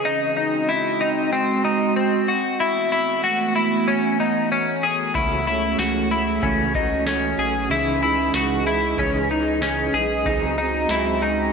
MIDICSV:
0, 0, Header, 1, 6, 480
1, 0, Start_track
1, 0, Key_signature, 4, "minor"
1, 0, Tempo, 638298
1, 35, Time_signature, 4, 2, 24, 8
1, 8668, End_track
2, 0, Start_track
2, 0, Title_t, "Clean electric guitar"
2, 0, Program_c, 0, 27
2, 39, Note_on_c, 0, 63, 79
2, 267, Note_off_c, 0, 63, 0
2, 276, Note_on_c, 0, 63, 70
2, 516, Note_off_c, 0, 63, 0
2, 517, Note_on_c, 0, 64, 66
2, 756, Note_off_c, 0, 64, 0
2, 757, Note_on_c, 0, 63, 69
2, 994, Note_off_c, 0, 63, 0
2, 997, Note_on_c, 0, 60, 75
2, 1235, Note_off_c, 0, 60, 0
2, 1238, Note_on_c, 0, 63, 70
2, 1474, Note_off_c, 0, 63, 0
2, 1477, Note_on_c, 0, 60, 71
2, 1716, Note_off_c, 0, 60, 0
2, 1717, Note_on_c, 0, 66, 62
2, 1954, Note_off_c, 0, 66, 0
2, 1957, Note_on_c, 0, 64, 82
2, 2188, Note_off_c, 0, 64, 0
2, 2197, Note_on_c, 0, 64, 67
2, 2431, Note_off_c, 0, 64, 0
2, 2434, Note_on_c, 0, 66, 69
2, 2671, Note_off_c, 0, 66, 0
2, 2674, Note_on_c, 0, 64, 64
2, 2914, Note_off_c, 0, 64, 0
2, 2915, Note_on_c, 0, 61, 73
2, 3155, Note_off_c, 0, 61, 0
2, 3158, Note_on_c, 0, 63, 66
2, 3394, Note_off_c, 0, 63, 0
2, 3397, Note_on_c, 0, 61, 71
2, 3634, Note_on_c, 0, 68, 66
2, 3636, Note_off_c, 0, 61, 0
2, 3871, Note_off_c, 0, 68, 0
2, 3874, Note_on_c, 0, 64, 76
2, 4107, Note_off_c, 0, 64, 0
2, 4116, Note_on_c, 0, 64, 70
2, 4354, Note_off_c, 0, 64, 0
2, 4357, Note_on_c, 0, 66, 67
2, 4595, Note_off_c, 0, 66, 0
2, 4598, Note_on_c, 0, 64, 67
2, 4834, Note_on_c, 0, 61, 67
2, 4836, Note_off_c, 0, 64, 0
2, 5074, Note_off_c, 0, 61, 0
2, 5078, Note_on_c, 0, 63, 69
2, 5314, Note_off_c, 0, 63, 0
2, 5317, Note_on_c, 0, 61, 73
2, 5556, Note_off_c, 0, 61, 0
2, 5557, Note_on_c, 0, 68, 65
2, 5796, Note_off_c, 0, 68, 0
2, 5799, Note_on_c, 0, 64, 79
2, 6028, Note_off_c, 0, 64, 0
2, 6037, Note_on_c, 0, 64, 69
2, 6276, Note_off_c, 0, 64, 0
2, 6281, Note_on_c, 0, 66, 68
2, 6514, Note_off_c, 0, 66, 0
2, 6517, Note_on_c, 0, 64, 66
2, 6756, Note_off_c, 0, 64, 0
2, 6762, Note_on_c, 0, 61, 71
2, 6998, Note_off_c, 0, 61, 0
2, 7001, Note_on_c, 0, 63, 66
2, 7234, Note_off_c, 0, 63, 0
2, 7237, Note_on_c, 0, 61, 77
2, 7475, Note_on_c, 0, 68, 68
2, 7476, Note_off_c, 0, 61, 0
2, 7715, Note_off_c, 0, 68, 0
2, 7716, Note_on_c, 0, 63, 80
2, 7947, Note_off_c, 0, 63, 0
2, 7956, Note_on_c, 0, 63, 75
2, 8196, Note_off_c, 0, 63, 0
2, 8202, Note_on_c, 0, 64, 66
2, 8438, Note_off_c, 0, 64, 0
2, 8439, Note_on_c, 0, 63, 68
2, 8668, Note_off_c, 0, 63, 0
2, 8668, End_track
3, 0, Start_track
3, 0, Title_t, "Ambient pad"
3, 0, Program_c, 1, 92
3, 39, Note_on_c, 1, 60, 75
3, 41, Note_on_c, 1, 56, 72
3, 41, Note_on_c, 1, 66, 85
3, 42, Note_on_c, 1, 75, 68
3, 1938, Note_off_c, 1, 60, 0
3, 1939, Note_off_c, 1, 56, 0
3, 1939, Note_off_c, 1, 75, 0
3, 1954, Note_on_c, 1, 57, 71
3, 1955, Note_on_c, 1, 59, 72
3, 1956, Note_on_c, 1, 52, 72
3, 3848, Note_off_c, 1, 66, 0
3, 3855, Note_off_c, 1, 57, 0
3, 3856, Note_off_c, 1, 59, 0
3, 3872, Note_on_c, 1, 57, 85
3, 3872, Note_on_c, 1, 68, 72
3, 3874, Note_on_c, 1, 61, 74
3, 5775, Note_off_c, 1, 57, 0
3, 5799, Note_on_c, 1, 75, 73
3, 7684, Note_off_c, 1, 68, 0
3, 7685, Note_off_c, 1, 52, 0
3, 7685, Note_off_c, 1, 61, 0
3, 7714, Note_on_c, 1, 66, 93
3, 7715, Note_on_c, 1, 56, 74
3, 7717, Note_on_c, 1, 60, 70
3, 8668, Note_off_c, 1, 56, 0
3, 8668, Note_off_c, 1, 60, 0
3, 8668, Note_off_c, 1, 66, 0
3, 8668, Note_off_c, 1, 75, 0
3, 8668, End_track
4, 0, Start_track
4, 0, Title_t, "Clean electric guitar"
4, 0, Program_c, 2, 27
4, 3867, Note_on_c, 2, 49, 79
4, 3874, Note_on_c, 2, 52, 75
4, 3881, Note_on_c, 2, 57, 80
4, 3887, Note_on_c, 2, 61, 82
4, 3893, Note_on_c, 2, 66, 78
4, 4094, Note_off_c, 2, 66, 0
4, 4103, Note_on_c, 2, 66, 50
4, 4111, Note_off_c, 2, 49, 0
4, 4115, Note_off_c, 2, 52, 0
4, 4115, Note_off_c, 2, 61, 0
4, 4118, Note_off_c, 2, 57, 0
4, 4124, Note_on_c, 2, 61, 49
4, 4142, Note_on_c, 2, 57, 40
4, 4346, Note_on_c, 2, 52, 55
4, 4349, Note_off_c, 2, 66, 0
4, 4352, Note_off_c, 2, 57, 0
4, 4360, Note_off_c, 2, 61, 0
4, 4361, Note_on_c, 2, 57, 60
4, 4374, Note_on_c, 2, 61, 64
4, 4384, Note_on_c, 2, 66, 63
4, 4573, Note_off_c, 2, 66, 0
4, 4582, Note_on_c, 2, 66, 50
4, 4591, Note_off_c, 2, 52, 0
4, 4595, Note_off_c, 2, 61, 0
4, 4598, Note_off_c, 2, 57, 0
4, 4604, Note_on_c, 2, 61, 44
4, 4622, Note_on_c, 2, 57, 43
4, 4825, Note_on_c, 2, 49, 80
4, 4828, Note_off_c, 2, 66, 0
4, 4829, Note_off_c, 2, 57, 0
4, 4832, Note_on_c, 2, 52, 77
4, 4838, Note_off_c, 2, 61, 0
4, 4838, Note_on_c, 2, 57, 76
4, 4847, Note_on_c, 2, 61, 76
4, 4853, Note_on_c, 2, 66, 77
4, 5058, Note_off_c, 2, 66, 0
4, 5067, Note_on_c, 2, 66, 57
4, 5070, Note_off_c, 2, 49, 0
4, 5074, Note_off_c, 2, 52, 0
4, 5077, Note_off_c, 2, 57, 0
4, 5081, Note_off_c, 2, 61, 0
4, 5089, Note_on_c, 2, 61, 48
4, 5104, Note_on_c, 2, 57, 39
4, 5302, Note_on_c, 2, 52, 57
4, 5308, Note_off_c, 2, 57, 0
4, 5311, Note_off_c, 2, 66, 0
4, 5317, Note_on_c, 2, 57, 59
4, 5322, Note_off_c, 2, 61, 0
4, 5330, Note_on_c, 2, 61, 58
4, 5343, Note_on_c, 2, 66, 61
4, 5533, Note_off_c, 2, 66, 0
4, 5542, Note_on_c, 2, 66, 48
4, 5549, Note_off_c, 2, 52, 0
4, 5556, Note_off_c, 2, 57, 0
4, 5556, Note_off_c, 2, 61, 0
4, 5565, Note_on_c, 2, 61, 53
4, 5583, Note_on_c, 2, 57, 40
4, 5782, Note_on_c, 2, 49, 76
4, 5789, Note_off_c, 2, 66, 0
4, 5796, Note_on_c, 2, 52, 77
4, 5800, Note_off_c, 2, 61, 0
4, 5801, Note_off_c, 2, 57, 0
4, 5804, Note_on_c, 2, 56, 71
4, 5813, Note_on_c, 2, 63, 83
4, 6015, Note_off_c, 2, 63, 0
4, 6024, Note_on_c, 2, 63, 57
4, 6029, Note_off_c, 2, 49, 0
4, 6036, Note_off_c, 2, 52, 0
4, 6040, Note_off_c, 2, 56, 0
4, 6047, Note_on_c, 2, 56, 48
4, 6064, Note_on_c, 2, 52, 44
4, 6263, Note_on_c, 2, 49, 62
4, 6268, Note_off_c, 2, 52, 0
4, 6270, Note_off_c, 2, 63, 0
4, 6277, Note_on_c, 2, 52, 57
4, 6281, Note_off_c, 2, 56, 0
4, 6290, Note_on_c, 2, 56, 62
4, 6303, Note_on_c, 2, 63, 58
4, 6494, Note_off_c, 2, 63, 0
4, 6503, Note_on_c, 2, 63, 55
4, 6509, Note_off_c, 2, 49, 0
4, 6516, Note_off_c, 2, 52, 0
4, 6517, Note_off_c, 2, 56, 0
4, 6526, Note_on_c, 2, 56, 43
4, 6544, Note_on_c, 2, 52, 43
4, 6742, Note_on_c, 2, 49, 71
4, 6745, Note_off_c, 2, 52, 0
4, 6749, Note_off_c, 2, 63, 0
4, 6753, Note_off_c, 2, 56, 0
4, 6754, Note_on_c, 2, 52, 74
4, 6762, Note_on_c, 2, 56, 87
4, 6770, Note_on_c, 2, 63, 81
4, 6969, Note_off_c, 2, 63, 0
4, 6978, Note_on_c, 2, 63, 58
4, 6989, Note_off_c, 2, 49, 0
4, 6991, Note_off_c, 2, 56, 0
4, 6994, Note_off_c, 2, 52, 0
4, 7000, Note_on_c, 2, 56, 49
4, 7018, Note_on_c, 2, 52, 45
4, 7220, Note_on_c, 2, 49, 57
4, 7227, Note_off_c, 2, 63, 0
4, 7228, Note_off_c, 2, 52, 0
4, 7237, Note_off_c, 2, 56, 0
4, 7237, Note_on_c, 2, 52, 64
4, 7249, Note_on_c, 2, 56, 61
4, 7262, Note_on_c, 2, 63, 70
4, 7456, Note_off_c, 2, 63, 0
4, 7465, Note_on_c, 2, 63, 54
4, 7468, Note_off_c, 2, 49, 0
4, 7476, Note_off_c, 2, 52, 0
4, 7477, Note_off_c, 2, 56, 0
4, 7486, Note_on_c, 2, 56, 43
4, 7508, Note_on_c, 2, 52, 43
4, 7708, Note_on_c, 2, 49, 68
4, 7710, Note_off_c, 2, 63, 0
4, 7713, Note_off_c, 2, 52, 0
4, 7716, Note_on_c, 2, 54, 81
4, 7721, Note_off_c, 2, 56, 0
4, 7724, Note_on_c, 2, 60, 89
4, 7729, Note_on_c, 2, 63, 83
4, 7735, Note_on_c, 2, 68, 85
4, 7936, Note_off_c, 2, 68, 0
4, 7945, Note_on_c, 2, 68, 49
4, 7951, Note_off_c, 2, 49, 0
4, 7956, Note_off_c, 2, 54, 0
4, 7958, Note_off_c, 2, 63, 0
4, 7959, Note_off_c, 2, 60, 0
4, 7967, Note_on_c, 2, 63, 54
4, 7984, Note_on_c, 2, 60, 47
4, 8182, Note_on_c, 2, 54, 62
4, 8190, Note_off_c, 2, 60, 0
4, 8190, Note_off_c, 2, 68, 0
4, 8199, Note_on_c, 2, 60, 66
4, 8201, Note_off_c, 2, 63, 0
4, 8211, Note_on_c, 2, 63, 61
4, 8222, Note_on_c, 2, 68, 63
4, 8416, Note_off_c, 2, 68, 0
4, 8425, Note_on_c, 2, 68, 51
4, 8429, Note_off_c, 2, 54, 0
4, 8437, Note_off_c, 2, 60, 0
4, 8440, Note_off_c, 2, 63, 0
4, 8449, Note_on_c, 2, 63, 49
4, 8465, Note_on_c, 2, 60, 42
4, 8668, Note_off_c, 2, 60, 0
4, 8668, Note_off_c, 2, 63, 0
4, 8668, Note_off_c, 2, 68, 0
4, 8668, End_track
5, 0, Start_track
5, 0, Title_t, "Analog synth bass"
5, 0, Program_c, 3, 38
5, 3874, Note_on_c, 3, 37, 92
5, 4330, Note_off_c, 3, 37, 0
5, 4354, Note_on_c, 3, 37, 104
5, 4810, Note_off_c, 3, 37, 0
5, 4833, Note_on_c, 3, 37, 98
5, 5524, Note_off_c, 3, 37, 0
5, 5551, Note_on_c, 3, 35, 92
5, 5781, Note_off_c, 3, 35, 0
5, 5792, Note_on_c, 3, 37, 90
5, 6249, Note_off_c, 3, 37, 0
5, 6273, Note_on_c, 3, 37, 99
5, 6730, Note_off_c, 3, 37, 0
5, 6755, Note_on_c, 3, 37, 97
5, 7445, Note_off_c, 3, 37, 0
5, 7473, Note_on_c, 3, 35, 84
5, 7702, Note_off_c, 3, 35, 0
5, 7713, Note_on_c, 3, 37, 95
5, 8170, Note_off_c, 3, 37, 0
5, 8193, Note_on_c, 3, 37, 102
5, 8650, Note_off_c, 3, 37, 0
5, 8668, End_track
6, 0, Start_track
6, 0, Title_t, "Drums"
6, 3873, Note_on_c, 9, 42, 64
6, 3874, Note_on_c, 9, 36, 107
6, 3948, Note_off_c, 9, 42, 0
6, 3949, Note_off_c, 9, 36, 0
6, 4118, Note_on_c, 9, 42, 36
6, 4194, Note_off_c, 9, 42, 0
6, 4351, Note_on_c, 9, 38, 96
6, 4351, Note_on_c, 9, 42, 57
6, 4426, Note_off_c, 9, 42, 0
6, 4427, Note_off_c, 9, 38, 0
6, 4590, Note_on_c, 9, 42, 44
6, 4666, Note_off_c, 9, 42, 0
6, 4834, Note_on_c, 9, 36, 78
6, 4838, Note_on_c, 9, 42, 70
6, 4910, Note_off_c, 9, 36, 0
6, 4913, Note_off_c, 9, 42, 0
6, 5070, Note_on_c, 9, 42, 46
6, 5074, Note_on_c, 9, 36, 85
6, 5145, Note_off_c, 9, 42, 0
6, 5149, Note_off_c, 9, 36, 0
6, 5313, Note_on_c, 9, 38, 95
6, 5315, Note_on_c, 9, 42, 68
6, 5389, Note_off_c, 9, 38, 0
6, 5390, Note_off_c, 9, 42, 0
6, 5553, Note_on_c, 9, 42, 49
6, 5628, Note_off_c, 9, 42, 0
6, 5794, Note_on_c, 9, 42, 67
6, 5870, Note_off_c, 9, 42, 0
6, 6040, Note_on_c, 9, 42, 36
6, 6115, Note_off_c, 9, 42, 0
6, 6271, Note_on_c, 9, 42, 58
6, 6272, Note_on_c, 9, 38, 99
6, 6346, Note_off_c, 9, 42, 0
6, 6347, Note_off_c, 9, 38, 0
6, 6512, Note_on_c, 9, 42, 45
6, 6588, Note_off_c, 9, 42, 0
6, 6755, Note_on_c, 9, 36, 80
6, 6759, Note_on_c, 9, 42, 68
6, 6830, Note_off_c, 9, 36, 0
6, 6834, Note_off_c, 9, 42, 0
6, 6991, Note_on_c, 9, 42, 46
6, 7067, Note_off_c, 9, 42, 0
6, 7233, Note_on_c, 9, 38, 102
6, 7235, Note_on_c, 9, 42, 72
6, 7308, Note_off_c, 9, 38, 0
6, 7310, Note_off_c, 9, 42, 0
6, 7473, Note_on_c, 9, 42, 49
6, 7548, Note_off_c, 9, 42, 0
6, 7714, Note_on_c, 9, 36, 108
6, 7715, Note_on_c, 9, 42, 66
6, 7789, Note_off_c, 9, 36, 0
6, 7790, Note_off_c, 9, 42, 0
6, 7958, Note_on_c, 9, 42, 36
6, 8033, Note_off_c, 9, 42, 0
6, 8190, Note_on_c, 9, 42, 64
6, 8191, Note_on_c, 9, 38, 94
6, 8266, Note_off_c, 9, 38, 0
6, 8266, Note_off_c, 9, 42, 0
6, 8429, Note_on_c, 9, 42, 45
6, 8505, Note_off_c, 9, 42, 0
6, 8668, End_track
0, 0, End_of_file